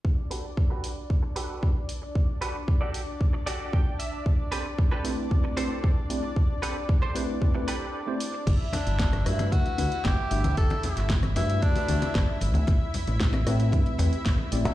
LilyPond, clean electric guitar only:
\new Staff \with { instrumentName = "Clean electric guitar" } { \time 4/4 \key g \major \tempo 4 = 114 r8 <fis' g' a' b'>16 r8 <fis' g' a' b'>16 r4 <fis' g' a' b'>8 r4 | r8 <fis' g' a' b'>16 r8 <fis' g' a' d''>16 r4 <fis' g' a' d''>8 g''8 e''8 | r8 <c' g' a' b'>16 r8 <c' g' a' b'>16 r4 <c' g' a' c''>8 r4 | r8 <c' g' a' b'>16 r8 <c' g' a' c''>16 r4 <c' g' a' b'>8 r4 |
r1 | r1 | r1 | }